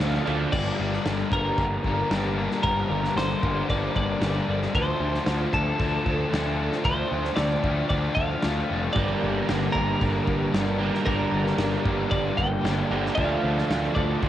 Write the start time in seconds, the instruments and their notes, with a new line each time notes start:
Already playing: overdriven electric guitar D3 F3 A3 D4, analog synth pad F4 C5 D5 G5, clean electric guitar F5
0.00 picked electric bass D2, distorted electric guitar D3 F3 A3 D4, snare
0.14 snare
0.26 picked electric bass D2, distorted electric guitar D3 F3 A3 D4, crash
0.52 picked electric bass G1, distorted electric guitar G2 D3 G3 A#3 D4, analog synth pad G4 A#4 D5 A#5, clean electric guitar D5, kick, crash
0.79 picked electric bass G1, distorted electric guitar G2 D3 G3 A#3 D4
0.93 snare
1.05 picked electric bass G1, distorted electric guitar G2 D3 G3 A#3 D4, snare, crash
1.32 picked electric bass G1, distorted electric guitar G2 D3 G3 A#3 D4, clean electric guitar A#4, kick
1.58 picked electric bass G1, distorted electric guitar G2 D3 G3 A#3 D4, kick, crash
1.84 picked electric bass G1, distorted electric guitar G2 D3 G3 A#3 D4, kick
2.10 picked electric bass G1, distorted electric guitar G2 D3 G3 A#3 D4, snare, crash
2.37 distorted electric guitar G2 D3 G3 A#3 D4
2.51 snare
2.63 picked electric bass G1, distorted electric guitar G2 D3 G3 A#3 D4, clean electric guitar A#4, analog synth pad C5, kick, crash
2.90 picked electric bass G1, distorted electric guitar G2 D3 G3 A#3 D4
3.04 snare
3.16 picked electric bass G1, distorted electric guitar G2 D3 G3 A#3 D4, clean electric guitar C5, snare, crash
3.42 picked electric bass G1, distorted electric guitar G2 D3 G3 A#3 D4, kick
3.69 picked electric bass G1, distorted electric guitar G2 D3 G3 A#3 D4, clean electric guitar D5, kick, crash
3.96 picked electric bass G1, distorted electric guitar G2 D3 G3 A#3 D4, clean electric guitar D5, kick
4.21 picked electric bass G1, distorted electric guitar G2 D3 G3 A#3 D4, snare, crash
4.48 picked electric bass G1, distorted electric guitar G2 D3 G3 A#3 D4
4.62 snare
4.74 picked electric bass D2, distorted electric guitar D3 F3 A3 D4, analog synth pad F4 C5 D5 A5, clean electric guitar C5, kick, crash
5.00 picked electric bass D2, distorted electric guitar D3 F3 A3 D4
5.14 snare
5.26 picked electric bass D2, distorted electric guitar D3 F3 A3 D4, snare, crash
5.53 picked electric bass D2, distorted electric guitar D3 F3 A3 D4, clean electric guitar A4, kick
5.79 picked electric bass D2, distorted electric guitar D3 F3 A3 D4, kick, crash
6.06 picked electric bass D2, distorted electric guitar D3 F3 A3 D4, kick
6.32 picked electric bass D2, distorted electric guitar D3 F3 A3 D4, snare, crash
6.58 distorted electric guitar D3 F3 A3 D4
6.72 snare
6.84 picked electric bass D2, distorted electric guitar D3 F3 A3 D4, clean electric guitar C5, analog synth pad G5, kick, crash
7.11 picked electric bass D2, distorted electric guitar D3 F3 A3 D4
7.25 snare
7.36 picked electric bass D2, distorted electric guitar D3 F3 A3 D4, clean electric guitar D5, snare, crash
7.64 picked electric bass D2, distorted electric guitar D3 F3 A3 D4, kick
7.89 picked electric bass D2, distorted electric guitar D3 F3 A3 D4, clean electric guitar D5, kick, crash
8.15 picked electric bass D2, distorted electric guitar D3 F3 A3 D4, clean electric guitar F5, kick
8.42 picked electric bass D2, distorted electric guitar D3 F3 A3 D4, snare, crash
8.70 picked electric bass F1, distorted electric guitar D3 F3 A3 D4
8.93 picked electric bass G1, distorted electric guitar G2 D3 G3, clean electric guitar D5, kick, crash
8.97 distorted electric guitar A#3 D4, analog synth pad G4 A#4 A#5
9.22 picked electric bass G1, distorted electric guitar G2 D3 G3 A#3 D4
9.49 picked electric bass G1, distorted electric guitar G2 D3 G3 A#3 D4, snare, crash
9.72 picked electric bass G1, distorted electric guitar G2 D3 G3 A#3 D4, clean electric guitar A#4, kick
10.01 picked electric bass G1, distorted electric guitar G2 D3 G3 A#3 D4, kick, crash
10.27 picked electric bass G1, distorted electric guitar G2 D3 G3 A#3 D4, kick
10.54 picked electric bass G1, distorted electric guitar G2 D3 G3 A#3 D4, snare, crash
10.81 distorted electric guitar G2 D3 G3 A#3 D4
10.94 snare
11.06 picked electric bass G1, distorted electric guitar G2 D3 G3 A#3 D4, clean electric guitar A#4, kick, crash
11.32 picked electric bass G1, distorted electric guitar G2 D3 G3 A#3 D4
11.47 snare
11.58 picked electric bass G1, distorted electric guitar G2 D3 G3 A#3 D4, snare, crash
11.85 picked electric bass G1, distorted electric guitar G2 D3 G3 A#3 D4, kick
12.11 picked electric bass G1, distorted electric guitar G2 D3 G3 A#3 D4, clean electric guitar D5, kick, crash
12.37 picked electric bass G1, distorted electric guitar G2 D3 G3 A#3 D4, clean electric guitar G5, kick
12.64 picked electric bass G1, distorted electric guitar G2 D3 G3 A#3 D4, snare, crash
12.90 picked electric bass G1, distorted electric guitar G2 D3 G3 A#3 D4
13.06 snare
13.15 picked electric bass D2, distorted electric guitar D3 F3 A3 D4, analog synth pad F4 C5 A5, clean electric guitar F5, kick, crash
13.43 picked electric bass D2, distorted electric guitar D3 F3 A3 D4
13.58 snare
13.70 picked electric bass D2, distorted electric guitar D3 F3 A3 D4, snare, crash
13.95 picked electric bass D2, distorted electric guitar D3 F3 A3 D4, clean electric guitar D5, kick
14.22 picked electric bass D2, distorted electric guitar D3 F3 A3 D4, kick, crash